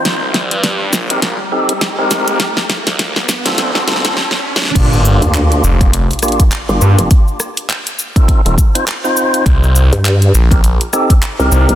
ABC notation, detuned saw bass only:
X:1
M:4/4
L:1/16
Q:"Swing 16ths" 1/4=102
K:Gm
V:1 name="Detuned saw bass" clef=bass
C,,3 G,,3 B,,,3 z4 C,, C,, B,,, | z3 D,,3 z2 D,,4 z4 | G,,,3 z3 F,,,3 z4 z G,, z | z8 z E,,, z6 |
C,,3 z3 B,,,3 z4 z C,, z |]